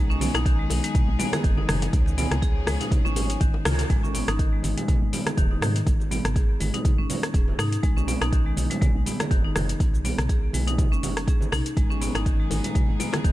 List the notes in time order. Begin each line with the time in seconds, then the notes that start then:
Already playing: B1 F#3 B3 D#4 G#4
0.10 C#4, muted conga, shaker
0.20 B3, open hi-hat, high conga, low conga, shaker
0.34 B1 D#4, cross-stick, closed hi-hat, low bongo, muted conga, high conga, shaker
0.46 D#3, kick, closed hi-hat, shaker
0.59 G#3
0.70 B1, open hi-hat, high bongo, low bongo, muted conga, high conga, shaker
0.84 G#3, closed hi-hat, shaker
0.95 G#3, kick, closed hi-hat, mid tom, muted conga, shaker
1.08 B1
1.19 B3, open hi-hat, low bongo, muted conga, low conga, shaker
1.33 G#4, cross-stick, closed hi-hat, high bongo, low bongo, high conga, shaker
1.44 F#1 D#3, kick, closed hi-hat, shaker
1.57 D#4, high bongo, muted conga, high conga
1.68 F#1 D#3, cross-stick, open hi-hat, mid tom, low conga, shaker
1.82 closed hi-hat, high bongo, muted conga, shaker
1.93 C#2 F3 C#4 G#4, kick, closed hi-hat, shaker
2.06 muted conga, shaker
2.18 B3, open hi-hat, high conga, low conga, shaker
2.31 C#2, cross-stick, closed hi-hat, mid tom, low bongo, muted conga, high conga, shaker
2.42 G#4, kick, closed hi-hat, shaker
2.66 C#2 G#3, cross-stick, open hi-hat, high bongo, low bongo, muted conga, high conga, shaker
2.80 D#4, closed hi-hat, low conga, shaker
2.91 kick, closed hi-hat, mid tom, muted conga, high conga, shaker
3.05 G#1 C#4, low bongo, shaker
3.16 open hi-hat, high bongo, muted conga, low conga, shaker
3.30 closed hi-hat, shaker
3.40 G#1 D#3, kick, closed hi-hat, low bongo, shaker
3.53 high bongo, muted conga
3.65 C#2 F4, cross-stick, open hi-hat, mid tom, low bongo, shaker
3.79 closed hi-hat, muted conga, shaker
3.90 G#1 G#3, kick, closed hi-hat, shaker
4.03 C#4, muted conga, high conga, shaker
4.14 B3, open hi-hat, low conga, shaker
4.28 G#1 D#4, cross-stick, closed hi-hat, shaker
4.39 D#3, kick, closed hi-hat, muted conga, shaker
4.53 G#3
4.63 G#1, open hi-hat, high conga, shaker
4.77 G#3, closed hi-hat, muted conga, low conga, shaker
4.88 G#3, kick, closed hi-hat, mid tom, high conga, shaker
5.02 G#1
5.13 B3, open hi-hat, muted conga, low conga, shaker
5.26 G#4, cross-stick, closed hi-hat, high conga, shaker
5.37 D#1 D#3, kick, closed hi-hat, high conga, shaker
5.51 D#4, muted conga
5.61 G#2 D#3, cross-stick, open hi-hat, mid tom, high conga, low conga, shaker
5.76 closed hi-hat, shaker
5.87 G#1, kick, closed hi-hat, shaker
6.00 muted conga, shaker
6.11 B3, open hi-hat, low conga, shaker
6.25 G#1, cross-stick, closed hi-hat, mid tom, shaker
6.36 G#4, kick, closed hi-hat, muted conga, shaker
6.60 G#1 G#3, open hi-hat, high conga, shaker
6.74 D#4, closed hi-hat, muted conga, low conga, shaker
6.85 kick, closed hi-hat, mid tom, high conga, shaker
6.98 G#1 C#4
7.10 open hi-hat, muted conga, high conga, low conga, shaker
7.23 cross-stick, closed hi-hat, shaker
7.34 D#1 G#4, kick, closed hi-hat, shaker
7.48 muted conga, high conga
7.59 G#2 D#4, cross-stick, open hi-hat, mid tom, shaker
7.72 closed hi-hat, shaker
7.83 B1 G#3, kick, closed hi-hat, shaker
7.96 C#4, muted conga, high conga, shaker
8.08 B3, open hi-hat, low conga, shaker
8.21 B1 D#4, cross-stick, closed hi-hat, shaker
8.32 D#3, kick, closed hi-hat, muted conga, shaker
8.46 G#3
8.57 B1, open hi-hat, high conga, shaker
8.70 G#3, closed hi-hat, muted conga, low conga, shaker
8.81 G#3, kick, closed hi-hat, mid tom, high conga, shaker
8.95 B1
9.06 B3, open hi-hat, muted conga, low conga, shaker
9.20 G#4, cross-stick, closed hi-hat, high conga, shaker
9.31 F#1 D#3, kick, closed hi-hat, high conga, shaker
9.44 D#4, muted conga
9.55 F#1 D#3, cross-stick, open hi-hat, mid tom, high conga, low conga, shaker
9.69 closed hi-hat, shaker
9.80 B1, kick, closed hi-hat, shaker
9.94 muted conga, shaker
10.04 B3, open hi-hat, low conga, shaker
10.18 B1, cross-stick, closed hi-hat, mid tom, shaker
10.29 G#4, kick, closed hi-hat, muted conga, shaker
10.53 B1 G#3, open hi-hat, high conga, shaker
10.67 D#4, closed hi-hat, muted conga, low conga, shaker
10.78 kick, closed hi-hat, mid tom, high conga, shaker
10.92 F#1 C#4, shaker
11.03 open hi-hat, muted conga, high conga, low conga, shaker
11.17 cross-stick, closed hi-hat, shaker
11.28 B1 G#4, kick, closed hi-hat, shaker
11.41 muted conga, high conga, shaker
11.52 B1 D#4, cross-stick, open hi-hat, mid tom, shaker
11.66 closed hi-hat, shaker
11.77 G#1 F#3 G#3 B3 D#4 G#4, kick, closed hi-hat, shaker
11.89 C#4, muted conga, high conga, shaker
12.01 B3, open hi-hat, low conga, shaker
12.15 G#1 D#4, cross-stick, closed hi-hat, low bongo, shaker
12.26 D#3, kick, closed hi-hat, muted conga, shaker
12.39 G#3
12.50 G#1, open hi-hat, high bongo, low bongo, high conga, shaker
12.64 G#3, closed hi-hat, muted conga, low conga, shaker
12.75 G#3, kick, closed hi-hat, mid tom, high conga, shaker
12.89 G#1
12.99 B3, open hi-hat, low bongo, muted conga, low conga, shaker
13.13 G#4, cross-stick, closed hi-hat, high bongo, low bongo, high conga, shaker
13.24 D#1 D#3, kick, closed hi-hat, high conga, shaker